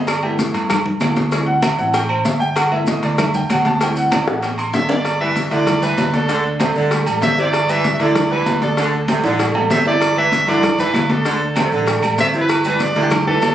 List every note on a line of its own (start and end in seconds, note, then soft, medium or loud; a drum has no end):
0.00 0.49 G1 medium
0.07 0.23 D5 medium
0.07 cowbell loud
0.07 high conga soft
0.07 low agogo loud
0.07 claves medium
0.07 maracas medium
0.23 0.67 A3 medium
0.23 0.68 B3 medium
0.23 0.68 E4 medium
0.23 0.33 G4 medium
0.23 high conga soft
0.23 low agogo medium
0.38 cowbell medium
0.38 high conga medium
0.38 low timbale medium
0.38 maracas medium
0.54 0.97 G2 loud
0.54 cowbell medium
0.54 high conga soft
0.54 low agogo medium
0.54 maracas soft
0.70 cowbell loud
0.70 high conga soft
0.70 low conga medium
0.70 low agogo loud
0.70 claves medium
0.70 maracas medium
0.86 high conga soft
0.86 low conga medium
1.00 1.73 D2 medium
1.00 1.15 A3 medium
1.00 1.15 B3 soft
1.00 1.15 E4 medium
1.00 cowbell medium
1.00 high conga medium
1.00 low timbale medium
1.00 low agogo loud
1.00 claves medium
1.00 maracas medium
1.16 cowbell medium
1.16 high conga medium
1.16 maracas soft
1.31 1.52 G3 medium
1.31 1.53 C4 medium
1.31 1.53 E4 medium
1.31 cowbell loud
1.31 high conga soft
1.31 low agogo medium
1.31 maracas medium
1.46 1.62 F#5 loud
1.46 high conga soft
1.62 1.78 E5 medium
1.62 cowbell medium
1.62 high conga loud
1.62 low timbale medium
1.62 low agogo loud
1.62 claves medium
1.62 maracas medium
1.78 2.22 A1 loud
1.78 1.92 G3 soft
1.78 1.93 C4 soft
1.78 1.93 E4 medium
1.78 1.94 F#5 medium
1.78 high conga soft
1.78 maracas soft
1.94 2.09 G5 loud
1.94 cowbell loud
1.94 high conga soft
1.94 low agogo medium
1.94 maracas medium
2.09 2.25 C5 medium
2.09 high conga soft
2.09 low agogo loud
2.09 claves medium
2.25 2.97 G1 loud
2.25 2.40 E5 medium
2.25 cowbell medium
2.25 high conga medium
2.25 low timbale medium
2.25 maracas medium
2.40 2.56 G5 loud
2.40 high conga soft
2.40 maracas soft
2.56 2.71 F#5 medium
2.56 cowbell loud
2.56 high conga soft
2.56 low agogo loud
2.56 claves medium
2.56 maracas medium
2.71 3.16 A3 medium
2.71 3.16 B3 medium
2.71 3.17 E4 medium
2.71 2.87 E5 loud
2.71 high conga soft
2.71 low agogo medium
2.87 3.03 D#5 medium
2.87 cowbell medium
2.87 high conga medium
2.87 low timbale medium
2.87 maracas medium
3.03 3.46 D2 loud
3.03 3.18 D5 medium
3.03 cowbell medium
3.03 high conga soft
3.03 low agogo medium
3.03 maracas soft
3.18 3.34 E5 loud
3.18 cowbell loud
3.18 high conga soft
3.18 low conga medium
3.18 low agogo loud
3.18 claves medium
3.18 maracas medium
3.34 3.50 G5 loud
3.34 high conga soft
3.34 low conga medium
3.34 maracas medium
3.49 4.21 D2 loud
3.49 3.65 F#5 loud
3.49 cowbell medium
3.49 high conga medium
3.49 low timbale medium
3.49 low agogo loud
3.49 claves medium
3.49 maracas medium
3.65 3.81 A5 loud
3.65 cowbell medium
3.65 high conga medium
3.65 maracas soft
3.80 4.25 G3 medium
3.80 4.26 C4 medium
3.80 4.26 E4 medium
3.80 3.96 G5 medium
3.80 cowbell loud
3.80 high conga soft
3.80 low agogo medium
3.80 maracas medium
3.96 4.12 F#5 loud
3.96 high conga soft
3.96 maracas medium
4.12 4.27 D5 medium
4.12 cowbell medium
4.12 high conga loud
4.12 high timbale medium
4.12 low agogo loud
4.12 claves medium
4.12 maracas medium
4.27 4.70 A1 loud
4.27 4.43 F#5 medium
4.27 high bongo loud
4.27 high conga soft
4.27 maracas soft
4.43 4.58 G5 medium
4.43 cowbell loud
4.43 high conga soft
4.43 low timbale medium
4.43 low agogo medium
4.43 maracas medium
4.58 4.68 C6 loud
4.58 high conga soft
4.58 low agogo loud
4.58 claves medium
4.58 maracas medium
4.73 5.46 G1 loud
4.73 4.88 E5 loud
4.73 cowbell medium
4.73 low bongo medium
4.73 high conga medium
4.73 low timbale loud
4.73 maracas medium
4.89 5.19 D5 loud
4.89 low bongo medium
4.89 high conga soft
4.89 low timbale loud
4.89 maracas soft
5.05 cowbell loud
5.05 high conga soft
5.05 low agogo loud
5.05 maracas medium
5.20 5.37 E3 medium
5.20 5.46 G3 medium
5.20 5.46 G4 medium
5.20 5.46 B4 medium
5.20 5.43 E5 loud
5.20 high conga soft
5.20 low agogo medium
5.36 cowbell medium
5.36 high conga medium
5.36 low timbale medium
5.36 maracas medium
5.45 5.53 E5 medium
5.51 5.95 D2 loud
5.51 5.68 D3 medium
5.51 5.77 E3 medium
5.51 5.77 E4 medium
5.51 5.85 D5 loud
5.51 5.77 E5 medium
5.51 cowbell medium
5.51 high conga soft
5.51 low agogo medium
5.51 maracas soft
5.66 cowbell loud
5.66 high conga soft
5.66 low conga medium
5.66 low agogo loud
5.66 maracas medium
5.82 6.07 E3 medium
5.82 6.08 G3 medium
5.82 6.08 G4 medium
5.82 6.08 B4 medium
5.82 6.14 B4 loud
5.82 high conga soft
5.82 maracas medium
5.97 6.70 D2 medium
5.97 cowbell medium
5.97 high conga medium
5.97 low timbale medium
5.97 low agogo loud
5.97 maracas medium
6.13 6.26 D3 medium
6.13 6.26 D4 medium
6.13 6.57 A4 medium
6.13 6.27 D5 medium
6.13 cowbell medium
6.13 high conga medium
6.13 maracas soft
6.28 6.45 D3 loud
6.28 6.55 D3 medium
6.28 6.55 D4 medium
6.28 6.55 D5 medium
6.28 cowbell loud
6.28 high conga soft
6.28 low agogo medium
6.28 maracas medium
6.45 high conga soft
6.60 6.69 C3 medium
6.60 6.85 G3 medium
6.60 6.86 G4 medium
6.60 6.86 A4 medium
6.60 cowbell medium
6.60 high conga loud
6.60 low timbale medium
6.60 low agogo loud
6.60 maracas medium
6.76 7.04 D2 loud
6.76 7.00 D3 medium
6.76 high conga soft
6.76 maracas soft
6.91 7.04 G3 medium
6.91 7.04 G4 medium
6.91 7.04 A4 medium
6.91 cowbell loud
6.91 high conga soft
6.91 low agogo medium
6.91 maracas medium
7.06 7.21 A1 medium
7.06 7.32 G3 medium
7.06 7.32 G4 medium
7.06 7.32 A4 medium
7.06 high conga soft
7.06 low agogo loud
7.06 maracas medium
7.22 7.94 G1 loud
7.22 7.31 C3 medium
7.22 7.41 E5 loud
7.22 cowbell medium
7.22 high conga medium
7.22 low timbale medium
7.22 maracas medium
7.37 7.46 C3 medium
7.37 7.63 E3 medium
7.37 7.63 E4 medium
7.37 7.71 D5 loud
7.37 7.63 E5 medium
7.37 high conga soft
7.37 maracas soft
7.53 cowbell loud
7.53 high conga soft
7.53 low agogo loud
7.53 maracas medium
7.68 7.85 E3 medium
7.68 7.94 G3 medium
7.68 7.94 G4 medium
7.68 7.95 B4 medium
7.68 7.93 E5 loud
7.68 high conga soft
7.68 low agogo medium
7.68 maracas medium
7.84 cowbell medium
7.84 high conga medium
7.84 low timbale medium
7.84 maracas medium
7.94 8.03 E5 medium
7.99 8.43 D2 loud
7.99 8.17 D3 medium
7.99 8.25 E3 medium
7.99 8.26 E4 medium
7.99 8.31 D5 loud
7.99 8.26 E5 medium
7.99 cowbell medium
7.99 high conga soft
7.99 low agogo medium
7.99 maracas soft
8.15 cowbell loud
8.15 high conga soft
8.15 low conga medium
8.15 low agogo loud
8.15 maracas medium
8.31 8.55 E3 medium
8.31 8.56 G3 medium
8.31 8.56 G4 medium
8.31 8.57 B4 medium
8.31 8.60 B4 loud
8.31 high conga soft
8.46 9.18 D2 loud
8.46 cowbell medium
8.46 high conga medium
8.46 low timbale medium
8.46 low agogo loud
8.46 maracas medium
8.62 8.75 D3 medium
8.62 8.75 D4 medium
8.62 9.05 A4 medium
8.62 8.75 D5 loud
8.62 cowbell medium
8.62 high conga medium
8.62 maracas soft
8.77 9.03 D3 medium
8.77 8.94 D3 loud
8.77 9.03 D4 medium
8.77 9.03 D5 medium
8.77 cowbell loud
8.77 high conga soft
8.77 low agogo medium
8.77 maracas medium
8.93 high conga soft
9.08 9.17 C3 medium
9.08 9.34 G3 medium
9.08 9.34 G4 medium
9.08 9.34 A4 medium
9.08 cowbell medium
9.08 high conga loud
9.08 low timbale medium
9.08 low agogo loud
9.08 maracas medium
9.24 9.53 A1 loud
9.24 9.49 D3 medium
9.24 high conga soft
9.24 high timbale medium
9.24 maracas soft
9.39 9.52 G3 medium
9.39 9.52 G4 medium
9.39 9.53 A4 medium
9.39 cowbell loud
9.39 high conga soft
9.39 high timbale medium
9.39 low agogo medium
9.39 maracas medium
9.55 9.69 A1 medium
9.55 9.81 G3 medium
9.55 9.81 G4 medium
9.55 9.81 A4 medium
9.55 high conga soft
9.55 low timbale medium
9.55 low agogo loud
9.70 10.42 G1 loud
9.70 9.78 C3 medium
9.70 9.85 E5 loud
9.70 cowbell medium
9.70 high conga medium
9.70 low timbale medium
9.70 maracas medium
9.86 9.94 C3 medium
9.86 10.11 E3 medium
9.86 10.11 E4 medium
9.86 10.15 D5 loud
9.86 10.12 E5 medium
9.86 high conga soft
9.86 low timbale loud
9.86 maracas soft
10.01 cowbell loud
10.01 high conga soft
10.01 low agogo loud
10.01 claves medium
10.01 maracas medium
10.16 10.33 E3 medium
10.16 10.42 G3 medium
10.16 10.42 G4 medium
10.16 10.42 B4 medium
10.16 10.46 E5 loud
10.16 high conga soft
10.16 low agogo medium
10.31 cowbell medium
10.31 high conga medium
10.31 low timbale medium
10.31 maracas medium
10.47 10.91 G2 loud
10.47 10.64 D3 medium
10.47 10.73 E3 medium
10.47 10.73 E4 medium
10.47 10.77 D5 loud
10.47 10.74 E5 medium
10.47 cowbell medium
10.47 high conga soft
10.47 low agogo medium
10.47 maracas soft
10.62 cowbell loud
10.62 high conga soft
10.62 low conga medium
10.62 low agogo loud
10.62 claves medium
10.62 maracas medium
10.79 11.03 E3 medium
10.79 11.04 G3 medium
10.79 11.04 G4 medium
10.79 11.05 B4 medium
10.79 11.12 B4 loud
10.79 high conga soft
10.79 low conga medium
10.79 maracas medium
10.94 11.66 D2 medium
10.94 cowbell medium
10.94 high conga medium
10.94 low timbale medium
10.94 low agogo loud
10.94 claves medium
10.94 maracas medium
11.10 11.23 D3 medium
11.10 11.23 D4 medium
11.10 11.57 A4 medium
11.10 11.23 D5 medium
11.10 cowbell medium
11.10 high conga medium
11.10 maracas soft
11.25 11.42 D3 medium
11.25 11.51 D3 medium
11.25 11.51 D4 medium
11.25 11.51 D5 medium
11.25 cowbell loud
11.25 high conga soft
11.25 low agogo medium
11.25 maracas medium
11.41 high conga soft
11.56 11.65 C3 medium
11.56 11.82 G3 medium
11.56 11.82 G4 medium
11.56 11.82 A4 medium
11.56 cowbell medium
11.56 high conga loud
11.56 low timbale medium
11.56 low agogo loud
11.56 claves medium
11.56 maracas medium
11.72 12.01 A1 loud
11.72 11.97 D3 medium
11.72 high conga soft
11.72 maracas soft
11.87 12.00 G3 medium
11.87 12.00 G4 medium
11.87 12.01 A4 medium
11.87 cowbell loud
11.87 high conga soft
11.87 low agogo medium
11.87 maracas medium
12.02 12.17 A1 medium
12.02 12.28 G3 medium
12.02 12.28 G4 medium
12.02 12.28 A4 medium
12.02 high conga soft
12.02 low agogo loud
12.02 claves medium
12.02 maracas medium
12.18 12.90 G1 loud
12.18 12.27 C3 medium
12.18 12.27 E5 loud
12.18 cowbell medium
12.18 high conga medium
12.18 low timbale medium
12.18 maracas medium
12.34 12.42 C3 medium
12.34 12.59 E3 medium
12.34 12.60 E4 medium
12.34 12.60 E5 medium
12.34 high conga soft
12.34 maracas soft
12.41 12.64 B4 loud
12.49 cowbell loud
12.49 high conga soft
12.49 low agogo loud
12.49 claves medium
12.49 maracas medium
12.64 12.81 E3 medium
12.64 12.91 G3 medium
12.64 12.91 G4 medium
12.64 12.91 B4 medium
12.64 12.84 B4 loud
12.64 high conga soft
12.64 low agogo medium
12.64 maracas medium
12.80 13.02 D5 loud
12.80 cowbell medium
12.80 high conga medium
12.80 low timbale medium
12.80 maracas medium
12.95 13.39 D2 loud
12.95 13.13 D3 medium
12.95 13.22 E3 medium
12.95 13.22 E4 medium
12.95 13.22 E5 medium
12.95 cowbell medium
12.95 high conga soft
12.95 low agogo medium
12.95 maracas soft
13.02 13.26 G4 medium
13.11 cowbell loud
13.11 high conga soft
13.11 low conga medium
13.11 low agogo loud
13.11 claves medium
13.11 maracas medium
13.27 13.52 E3 medium
13.27 13.52 G3 medium
13.27 13.52 G4 medium
13.27 13.55 A4 loud
13.27 13.52 B4 medium
13.27 high conga soft
13.27 low conga medium
13.42 13.55 D2 loud
13.42 cowbell medium
13.42 high conga medium
13.42 low timbale medium
13.42 low agogo loud
13.42 claves medium
13.42 maracas medium